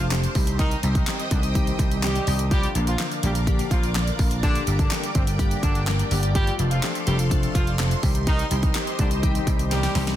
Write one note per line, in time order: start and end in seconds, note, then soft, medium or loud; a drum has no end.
0.00 0.25 F1 medium
0.00 2.47 C5 medium
0.00 0.34 F5 medium
0.00 0.34 A5 medium
0.00 0.31 D6 medium
0.11 0.29 F3 medium
0.11 0.29 A3 medium
0.11 0.29 C4 medium
0.11 0.29 D4 medium
0.11 0.29 G4 medium
0.11 snare loud
0.11 clap loud
0.11 closed hi-hat loud
0.24 closed hi-hat medium
0.35 0.73 C2 medium
0.35 0.73 D#3 medium
0.35 0.74 G3 medium
0.35 0.74 C4 medium
0.35 0.74 D#4 medium
0.35 0.74 G4 loud
0.35 2.49 D#5 medium
0.35 2.49 G5 medium
0.35 2.49 D#6 medium
0.35 kick loud
0.35 open hi-hat medium
0.47 closed hi-hat medium
0.59 0.78 D#3 loud
0.59 0.78 D#4 loud
0.59 kick loud
0.59 closed hi-hat medium
0.71 closed hi-hat medium
0.83 1.02 C2 loud
0.83 1.01 D#3 medium
0.83 1.01 G3 medium
0.83 1.01 C4 medium
0.83 1.01 D#4 medium
0.83 1.01 G4 medium
0.83 closed hi-hat medium
0.95 1.14 D#3 medium
0.95 1.14 D#4 medium
0.95 kick loud
0.95 closed hi-hat medium
1.07 1.25 D#3 medium
1.07 1.25 G3 medium
1.07 1.25 C4 medium
1.07 1.25 D#4 medium
1.07 1.25 G4 medium
1.07 snare medium
1.07 clap loud
1.07 closed hi-hat medium
1.19 closed hi-hat medium
1.31 1.69 C2 loud
1.31 1.40 D3 medium
1.31 1.49 D#3 medium
1.31 1.49 G3 medium
1.31 1.49 C4 medium
1.31 1.40 D4 medium
1.31 1.49 D#4 medium
1.31 1.49 G4 medium
1.31 kick loud
1.31 closed hi-hat medium
1.43 closed hi-hat medium
1.55 1.73 D#3 loud
1.55 1.73 G3 loud
1.55 1.73 C4 loud
1.55 1.73 D#4 loud
1.55 1.73 G4 loud
1.55 kick medium
1.55 closed hi-hat medium
1.67 closed hi-hat medium
1.79 2.17 C2 medium
1.79 1.97 D#3 medium
1.79 1.97 G3 medium
1.79 1.97 C4 medium
1.79 1.97 D#4 medium
1.79 1.97 G4 loud
1.79 kick loud
1.79 closed hi-hat medium
1.91 closed hi-hat soft
2.03 2.21 D#3 medium
2.03 2.21 G3 medium
2.03 2.37 G3 medium
2.03 2.21 C4 medium
2.03 2.21 D#4 medium
2.03 2.37 G4 medium
2.03 2.21 G4 medium
2.03 snare loud
2.03 clap loud
2.03 closed hi-hat loud
2.16 closed hi-hat medium
2.27 2.65 C2 loud
2.27 2.45 D#3 medium
2.27 2.45 G3 medium
2.27 2.45 C4 medium
2.27 2.45 D#4 medium
2.27 2.45 G4 medium
2.27 open hi-hat medium
2.39 closed hi-hat medium
2.51 2.69 D3 loud
2.51 2.69 F3 medium
2.51 2.70 G3 loud
2.51 2.69 A#3 loud
2.51 2.69 D4 medium
2.51 2.69 F4 loud
2.51 2.70 G4 loud
2.51 6.31 A#4 medium
2.51 7.99 D5 medium
2.51 4.41 F5 medium
2.51 6.31 D6 medium
2.51 kick loud
2.51 closed hi-hat medium
2.63 closed hi-hat medium
2.75 2.94 A#1 loud
2.75 2.93 D3 medium
2.75 2.93 F3 medium
2.75 2.93 A#3 medium
2.75 2.93 D4 medium
2.75 2.93 F4 medium
2.75 closed hi-hat medium
2.87 3.06 F3 medium
2.87 3.06 F4 medium
2.87 closed hi-hat medium
2.99 3.17 D3 medium
2.99 3.17 F3 medium
2.99 3.17 A#3 medium
2.99 3.17 D4 medium
2.99 3.17 F4 medium
2.99 snare medium
2.99 clap loud
2.99 closed hi-hat medium
3.12 closed hi-hat medium
3.23 3.61 A#1 loud
3.23 3.41 D3 medium
3.23 3.41 F3 medium
3.23 3.33 G3 medium
3.23 3.41 A#3 medium
3.23 3.41 D4 medium
3.23 3.33 G4 medium
3.23 3.41 G4 medium
3.23 closed hi-hat medium
3.35 closed hi-hat medium
3.47 3.65 D3 loud
3.47 3.65 F3 loud
3.47 3.65 A#3 loud
3.47 3.65 D4 loud
3.47 3.65 G4 loud
3.47 kick medium
3.47 closed hi-hat medium
3.59 closed hi-hat medium
3.71 4.09 A#1 medium
3.71 3.89 D3 medium
3.71 3.89 F3 medium
3.71 3.90 F3 medium
3.71 3.89 A#3 medium
3.71 3.89 D4 medium
3.71 3.90 F4 medium
3.71 3.89 F4 medium
3.71 kick loud
3.71 closed hi-hat medium
3.83 closed hi-hat soft
3.95 4.13 D3 medium
3.95 4.13 F3 medium
3.95 4.13 A#3 medium
3.95 4.13 D4 medium
3.95 4.13 F4 medium
3.95 snare medium
3.95 clap loud
3.95 closed hi-hat loud
4.07 closed hi-hat medium
4.19 4.57 A#1 loud
4.19 4.37 D3 medium
4.19 4.37 F3 medium
4.19 4.37 A#3 medium
4.19 4.37 D4 medium
4.19 4.37 F4 loud
4.19 kick loud
4.19 open hi-hat medium
4.31 closed hi-hat medium
4.43 4.61 D3 loud
4.43 4.62 D3 loud
4.43 4.61 G3 medium
4.43 4.61 A#3 medium
4.43 4.61 D4 medium
4.43 4.62 D4 loud
4.43 4.61 G4 loud
4.43 6.33 G5 medium
4.43 kick loud
4.43 closed hi-hat medium
4.55 closed hi-hat medium
4.67 4.86 G1 loud
4.67 4.85 D3 medium
4.67 4.85 G3 medium
4.67 4.85 A#3 medium
4.67 4.85 D4 medium
4.67 4.85 G4 medium
4.67 closed hi-hat medium
4.79 4.98 D3 medium
4.79 4.98 D4 medium
4.79 kick medium
4.79 closed hi-hat medium
4.91 5.09 D3 medium
4.91 5.09 G3 medium
4.91 5.09 A#3 medium
4.91 5.09 D4 medium
4.91 5.09 G4 medium
4.91 snare medium
4.91 clap loud
4.91 closed hi-hat medium
5.03 closed hi-hat medium
5.15 5.53 G1 loud
5.15 5.24 C3 medium
5.15 5.33 D3 medium
5.15 5.33 G3 medium
5.15 5.33 A#3 medium
5.15 5.24 C4 medium
5.15 5.33 D4 medium
5.15 5.33 G4 medium
5.15 kick loud
5.15 closed hi-hat medium
5.27 closed hi-hat medium
5.39 5.57 D3 loud
5.39 5.57 G3 loud
5.39 5.57 A#3 loud
5.39 5.57 D4 loud
5.39 5.57 G4 loud
5.39 kick loud
5.39 closed hi-hat medium
5.51 closed hi-hat medium
5.63 6.01 G1 medium
5.63 5.81 D3 medium
5.63 5.82 D3 medium
5.63 5.81 G3 medium
5.63 5.81 A#3 medium
5.63 5.82 D4 medium
5.63 5.81 D4 medium
5.63 5.81 G4 medium
5.63 kick medium
5.63 closed hi-hat medium
5.75 closed hi-hat soft
5.87 6.05 D3 medium
5.87 6.05 G3 medium
5.87 6.05 A#3 medium
5.87 6.05 D4 medium
5.87 6.05 G4 medium
5.87 snare loud
5.87 clap loud
5.87 closed hi-hat loud
5.99 closed hi-hat medium
6.11 6.49 G1 loud
6.11 6.29 D3 medium
6.11 6.29 G3 medium
6.11 6.29 A#3 medium
6.11 6.29 D4 medium
6.11 6.29 G4 loud
6.11 open hi-hat medium
6.23 closed hi-hat medium
6.35 6.53 F3 loud
6.35 6.54 G3 medium
6.35 6.53 A3 medium
6.35 6.53 C4 loud
6.35 6.53 D4 loud
6.35 6.53 F4 loud
6.35 6.54 G4 loud
6.35 8.01 A4 medium
6.35 8.01 F5 medium
6.35 10.15 C6 medium
6.35 kick loud
6.35 closed hi-hat medium
6.47 closed hi-hat medium
6.59 6.78 F1 loud
6.59 6.77 F3 medium
6.59 6.77 A3 medium
6.59 6.77 C4 medium
6.59 6.77 D4 medium
6.59 6.77 F4 medium
6.59 closed hi-hat medium
6.71 6.90 F3 medium
6.71 6.90 F4 medium
6.71 closed hi-hat medium
6.83 7.01 F3 medium
6.83 7.01 A3 medium
6.83 7.01 C4 medium
6.83 7.01 D4 medium
6.83 7.01 G4 medium
6.83 snare medium
6.83 clap loud
6.83 closed hi-hat medium
6.95 closed hi-hat medium
7.07 7.45 F1 loud
7.07 7.25 F3 medium
7.07 7.16 G3 medium
7.07 7.25 A3 medium
7.07 7.25 C4 medium
7.07 7.25 D4 medium
7.07 7.25 F4 medium
7.07 7.16 G4 medium
7.07 closed hi-hat medium
7.19 closed hi-hat medium
7.31 7.49 F3 loud
7.31 7.49 A3 loud
7.31 7.49 C4 loud
7.31 7.49 D4 loud
7.31 7.49 F4 loud
7.31 kick medium
7.31 closed hi-hat loud
7.43 closed hi-hat medium
7.55 7.93 F1 medium
7.55 7.73 F3 medium
7.55 7.74 F3 medium
7.55 7.73 A3 medium
7.55 7.73 C4 medium
7.55 7.73 D4 medium
7.55 7.74 F4 medium
7.55 7.73 F4 medium
7.55 kick loud
7.55 closed hi-hat medium
7.67 closed hi-hat soft
7.79 7.97 F3 medium
7.79 7.97 A3 medium
7.79 7.97 C4 medium
7.79 7.97 D4 medium
7.79 7.97 F4 medium
7.79 snare medium
7.79 clap loud
7.79 closed hi-hat loud
7.91 closed hi-hat medium
8.03 8.41 C2 medium
8.03 8.41 D#3 loud
8.03 8.41 G3 medium
8.03 8.41 C4 medium
8.03 8.42 D#4 medium
8.03 8.42 G4 loud
8.03 10.16 G4 medium
8.03 10.16 C5 medium
8.03 10.16 D#5 medium
8.03 kick loud
8.03 open hi-hat medium
8.15 closed hi-hat medium
8.27 8.46 D#3 loud
8.27 8.46 D#4 loud
8.27 kick loud
8.27 closed hi-hat medium
8.39 closed hi-hat medium
8.51 8.70 C2 medium
8.51 8.69 D#3 medium
8.51 8.69 G3 medium
8.51 8.69 C4 medium
8.51 8.69 D#4 medium
8.51 8.69 G4 medium
8.51 closed hi-hat medium
8.63 8.82 D#3 medium
8.63 8.82 D#4 medium
8.63 kick medium
8.63 closed hi-hat medium
8.75 8.93 D#3 medium
8.75 8.93 G3 medium
8.75 8.93 C4 medium
8.75 8.93 D#4 medium
8.75 8.93 G4 medium
8.75 snare medium
8.75 clap loud
8.75 closed hi-hat medium
8.87 closed hi-hat medium
8.99 9.37 C2 loud
8.99 9.08 D3 medium
8.99 9.17 D#3 medium
8.99 9.17 G3 medium
8.99 9.17 C4 medium
8.99 9.08 D4 medium
8.99 9.17 D#4 medium
8.99 9.17 G4 medium
8.99 kick loud
8.99 closed hi-hat medium
9.11 closed hi-hat medium
9.23 9.41 D#3 loud
9.23 9.41 G3 loud
9.23 9.41 C4 loud
9.23 9.41 D#4 loud
9.23 9.41 G4 loud
9.23 kick medium
9.23 closed hi-hat medium
9.35 closed hi-hat medium
9.47 9.85 C2 medium
9.47 9.65 D#3 loud
9.47 9.65 G3 medium
9.47 9.65 C4 medium
9.47 9.65 D#4 medium
9.47 9.65 G4 loud
9.47 kick loud
9.47 closed hi-hat medium
9.59 closed hi-hat soft
9.71 9.89 D#3 medium
9.71 9.89 G3 medium
9.71 10.05 G3 medium
9.71 9.89 C4 medium
9.71 9.89 D#4 medium
9.71 10.05 G4 medium
9.71 9.89 A#4 medium
9.71 snare medium
9.71 closed hi-hat loud
9.83 snare medium
9.83 closed hi-hat medium
9.95 10.14 C2 medium
9.95 10.13 D#3 medium
9.95 10.13 G3 medium
9.95 10.13 C4 medium
9.95 10.13 D#4 medium
9.95 10.13 G4 medium
9.95 snare loud
9.95 open hi-hat medium
10.07 snare loud
10.07 closed hi-hat medium